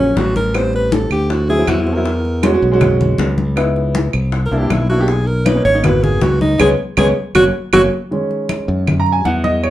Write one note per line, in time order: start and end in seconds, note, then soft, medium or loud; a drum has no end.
0.00 0.12 A#1 loud
0.00 0.21 F#3 loud
0.00 0.22 A#3 medium
0.00 0.18 C#4 loud
0.00 0.22 C#4 loud
0.17 1.05 A1 loud
0.17 0.36 F#4 loud
0.17 high bongo medium
0.17 low bongo medium
0.17 high conga medium
0.36 0.57 A#4 loud
0.36 high conga medium
0.53 1.07 G3 medium
0.53 1.07 B3 medium
0.53 1.08 C4 medium
0.53 0.74 C5 loud
0.53 high bongo medium
0.53 high conga soft
0.53 claves medium
0.73 0.94 B4 loud
0.73 high bongo soft
0.73 high conga soft
0.92 1.11 A4 medium
0.92 high bongo medium
0.92 high conga medium
1.11 1.64 D2 loud
1.11 1.33 G4 loud
1.11 high bongo soft
1.11 high conga soft
1.11 claves medium
1.30 1.49 F#4 medium
1.30 high bongo medium
1.30 high conga soft
1.49 1.55 F#3 medium
1.49 1.56 C4 medium
1.49 1.56 E4 medium
1.49 1.70 G#4 loud
1.49 high bongo soft
1.49 high conga soft
1.57 1.78 F#3 medium
1.57 1.78 C4 medium
1.57 1.79 E4 medium
1.67 2.56 E2 loud
1.67 1.83 F#4 loud
1.67 high bongo medium
1.67 low bongo medium
1.67 high conga medium
1.67 claves medium
1.81 1.96 E4 medium
1.86 1.93 F#3 medium
1.86 1.93 C4 medium
1.86 1.94 F#4 medium
1.86 high conga soft
1.94 2.05 F#3 medium
1.94 2.06 C4 medium
1.94 2.06 E4 medium
1.94 2.50 A#4 medium
2.06 high bongo medium
2.06 high conga soft
2.25 high conga soft
2.43 2.50 G#3 loud
2.43 2.50 C#4 medium
2.43 2.51 F#4 loud
2.43 high bongo medium
2.43 high conga loud
2.43 claves medium
2.52 2.66 G#3 medium
2.52 2.66 C#4 medium
2.52 2.67 F#4 loud
2.62 3.15 B1 loud
2.72 3.25 G#3 medium
2.72 3.25 C#4 medium
2.72 3.26 F#4 loud
2.81 high bongo medium
2.81 high conga soft
2.81 low conga medium
2.81 claves medium
3.01 high conga soft
3.01 low conga medium
3.18 4.08 C#2 loud
3.18 high bongo medium
3.18 low bongo medium
3.18 high conga medium
3.38 high conga medium
3.56 4.09 B3 medium
3.56 4.10 D#4 medium
3.56 4.10 E4 medium
3.56 high bongo medium
3.56 high conga soft
3.56 claves medium
3.76 high bongo soft
3.76 high conga soft
3.95 high bongo medium
3.95 high conga loud
4.13 4.49 C2 loud
4.13 high bongo soft
4.13 high conga soft
4.13 claves medium
4.32 high bongo medium
4.32 high conga soft
4.46 4.60 A#4 medium
4.51 4.69 C2 medium
4.51 4.58 A#3 medium
4.51 4.58 D4 medium
4.51 4.59 E4 medium
4.51 high bongo soft
4.51 high conga soft
4.58 4.81 A#3 medium
4.58 4.81 D4 medium
4.58 4.82 E4 medium
4.58 4.74 G4 medium
4.70 5.59 B1 medium
4.70 4.89 E4 medium
4.70 high bongo medium
4.70 low bongo medium
4.70 high conga medium
4.70 claves medium
4.89 4.96 A#3 medium
4.89 4.97 D4 medium
4.89 4.97 E4 medium
4.89 5.11 F#4 loud
4.89 high conga soft
4.98 5.08 A#3 medium
4.98 5.09 D4 medium
4.98 5.09 G4 loud
5.08 5.28 G#4 medium
5.08 high bongo medium
5.08 high conga soft
5.27 5.47 A#4 loud
5.27 high conga soft
5.45 5.52 A#3 medium
5.45 5.53 C#4 medium
5.45 5.53 D#4 medium
5.45 5.64 B4 medium
5.45 high bongo medium
5.45 high conga loud
5.45 claves medium
5.55 5.68 A#3 medium
5.55 5.69 C#4 medium
5.55 5.69 D#4 medium
5.65 6.18 G#1 loud
5.65 5.86 C#5 loud
5.73 5.81 A#3 medium
5.73 5.84 C#4 medium
5.73 5.84 D#4 medium
5.83 6.44 A#3 medium
5.83 6.45 B3 medium
5.83 6.45 F#4 medium
5.83 6.05 B4 loud
5.83 high bongo medium
5.83 high conga soft
5.83 low conga medium
5.83 claves medium
6.03 6.24 G#4 loud
6.03 high conga soft
6.03 low conga medium
6.21 6.57 C#2 loud
6.21 6.41 F#4 medium
6.21 high bongo medium
6.21 low bongo medium
6.21 high conga medium
6.41 6.59 D#4 loud
6.41 high conga loud
6.59 6.74 C#2 loud
6.59 6.72 G#3 loud
6.59 6.72 B3 loud
6.59 6.72 C#4 loud
6.59 6.70 G#4 loud
6.59 low bongo loud
6.59 high conga loud
6.59 claves loud
6.97 7.12 C#2 loud
6.97 7.10 G#3 loud
6.97 7.10 B3 loud
6.97 7.10 C#4 loud
6.97 7.07 G#4 loud
6.97 low bongo loud
6.97 high conga loud
6.97 claves loud
7.35 7.49 F#1 loud
7.35 7.48 F#3 loud
7.35 7.48 A#3 medium
7.35 7.48 C#4 loud
7.35 7.44 F#4 loud
7.35 low bongo loud
7.35 high conga loud
7.35 claves loud
7.73 7.87 F#1 loud
7.73 7.85 F#3 loud
7.73 7.85 A#3 loud
7.73 7.86 C#4 loud
7.73 7.82 F#4 loud
7.73 low bongo loud
7.73 high conga loud
7.73 claves loud
8.11 9.59 D#3 medium
8.11 9.59 G#3 medium
8.11 9.60 C#4 medium
8.11 high conga soft
8.31 high conga soft
8.49 high conga loud
8.49 claves medium
8.68 9.21 F#2 loud
8.87 high conga soft
8.87 low conga medium
8.87 claves medium
9.00 9.12 A#5 medium
9.06 high conga soft
9.12 9.25 G#5 medium
9.25 9.70 E2 medium
9.25 9.44 F#5 medium
9.25 high conga medium
9.44 9.62 D#5 medium
9.44 high conga medium
9.63 9.70 C#5 medium
9.63 high conga soft
9.63 claves medium